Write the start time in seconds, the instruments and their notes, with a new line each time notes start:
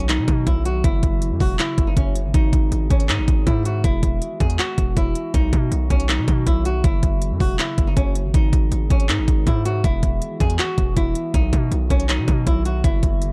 Already playing: 808-style bass B1, ambient pad D#3 F#3 B3 F#4
0.09 nylon-string guitar D#4, clap, closed hi-hat
0.18 808-style bass B2
0.28 808-style bass B2, kick, closed hi-hat
0.47 808-style bass B1, nylon-string guitar E4, kick, closed hi-hat
0.65 nylon-string guitar F#4, closed hi-hat
0.84 808-style bass F#1, ambient pad C#3 A#3 F#4, nylon-string guitar E4, kick, closed hi-hat
1.03 808-style bass F#1, kick, closed hi-hat
1.22 closed hi-hat
1.31 808-style bass F#2
1.40 808-style bass E1, nylon-string guitar F#4, kick, open hi-hat
1.59 nylon-string guitar E4, clap, closed hi-hat
1.78 808-style bass F#1, kick, closed hi-hat
1.87 nylon-string guitar D#4
1.97 808-style bass F#1, nylon-string guitar C#4, kick, closed hi-hat
2.15 closed hi-hat
2.25 808-style bass G#1
2.34 808-style bass G#1, ambient pad D#3 G#3 B3 G#4, nylon-string guitar D#4, kick, closed hi-hat
2.53 808-style bass G#1, kick, closed hi-hat
2.72 808-style bass G#1, closed hi-hat
2.90 808-style bass G#1, nylon-string guitar C#4, kick, closed hi-hat
3.00 closed hi-hat
3.09 808-style bass G#2, nylon-string guitar D#4, clap, closed hi-hat
3.18 808-style bass G#1
3.28 808-style bass G#1, kick, closed hi-hat
3.47 808-style bass G#2, nylon-string guitar E4, kick, closed hi-hat
3.65 nylon-string guitar F#4, closed hi-hat
3.84 808-style bass E1, ambient pad E3 F#4, nylon-string guitar E4, kick, closed hi-hat
4.03 808-style bass E1, kick, closed hi-hat
4.22 closed hi-hat
4.40 808-style bass E2, nylon-string guitar G#4, kick, closed hi-hat
4.50 closed hi-hat
4.59 nylon-string guitar F#4, clap, closed hi-hat
4.78 808-style bass E1, kick, closed hi-hat
4.97 808-style bass E1, nylon-string guitar E4, kick, closed hi-hat
5.15 closed hi-hat
5.34 808-style bass B1, ambient pad D#3 F#3, nylon-string guitar D#4, kick, closed hi-hat
5.53 808-style bass B2, kick, closed hi-hat
5.72 808-style bass B1, closed hi-hat
5.90 808-style bass B1, nylon-string guitar C#4, kick, closed hi-hat
6.00 closed hi-hat
6.09 nylon-string guitar D#4, clap, closed hi-hat
6.18 808-style bass B2
6.28 808-style bass B2, kick, closed hi-hat
6.47 808-style bass B1, nylon-string guitar E4, kick, closed hi-hat
6.65 nylon-string guitar F#4, closed hi-hat
6.84 808-style bass F#1, ambient pad C#3 A#3, nylon-string guitar E4, kick, closed hi-hat
7.03 808-style bass F#1, kick, closed hi-hat
7.22 closed hi-hat
7.31 808-style bass F#2
7.40 808-style bass E1, nylon-string guitar F#4, kick, open hi-hat
7.59 nylon-string guitar E4, clap, closed hi-hat
7.78 808-style bass F#1, kick, closed hi-hat
7.87 nylon-string guitar D#4
7.97 808-style bass F#1, nylon-string guitar C#4, kick, closed hi-hat
8.15 closed hi-hat
8.25 808-style bass G#1
8.34 808-style bass G#1, ambient pad D#3 G#3 B3 G#4, nylon-string guitar D#4, kick, closed hi-hat
8.53 808-style bass G#1, kick, closed hi-hat
8.72 808-style bass G#1, closed hi-hat
8.90 808-style bass G#1, nylon-string guitar C#4, kick, closed hi-hat
9.00 closed hi-hat
9.09 808-style bass G#2, nylon-string guitar D#4, clap, closed hi-hat
9.19 808-style bass G#1
9.28 808-style bass G#1, kick, closed hi-hat
9.47 808-style bass G#2, nylon-string guitar E4, kick, closed hi-hat
9.65 nylon-string guitar F#4, closed hi-hat
9.84 808-style bass E1, ambient pad E3 F#4, nylon-string guitar E4, kick, closed hi-hat
10.03 808-style bass E1, kick, closed hi-hat
10.22 closed hi-hat
10.40 808-style bass E2, nylon-string guitar G#4, kick, closed hi-hat
10.50 closed hi-hat
10.59 nylon-string guitar F#4, clap, closed hi-hat
10.78 808-style bass E1, kick, closed hi-hat
10.97 808-style bass E1, nylon-string guitar E4, kick, closed hi-hat
11.15 closed hi-hat
11.34 808-style bass B1, ambient pad D#3 F#3 F#4, nylon-string guitar D#4, kick, closed hi-hat
11.53 808-style bass B2, kick, closed hi-hat
11.72 808-style bass B1, closed hi-hat
11.90 808-style bass B1, nylon-string guitar C#4, kick, closed hi-hat
12.00 closed hi-hat
12.09 nylon-string guitar D#4, clap, closed hi-hat
12.19 808-style bass B2
12.28 808-style bass B2, kick, closed hi-hat
12.47 808-style bass B1, nylon-string guitar E4, kick, closed hi-hat
12.65 nylon-string guitar F#4, closed hi-hat
12.84 808-style bass F#1, ambient pad C#3 A#3, nylon-string guitar E4, kick, closed hi-hat
13.03 808-style bass F#1, kick, closed hi-hat
13.22 closed hi-hat